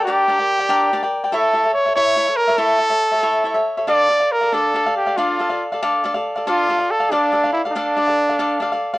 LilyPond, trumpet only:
\new Staff \with { instrumentName = "Trumpet" } { \time 6/8 \key d \minor \tempo 4. = 93 g'2~ g'8 r8 | a'4 cis''8 cis''4 bes'8 | a'2~ a'8 r8 | d''4 bes'8 a'4 g'8 |
f'4 r2 | f'4 a'8 d'4 e'8 | d'2~ d'8 r8 | }